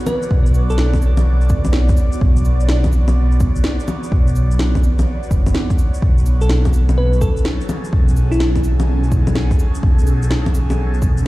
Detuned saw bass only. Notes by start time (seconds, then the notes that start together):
0.31 B1
1.26 B1
2.21 B1
4.12 B1
5.31 F#1
6.02 B1
7.93 B1
8.88 B1
9.83 B1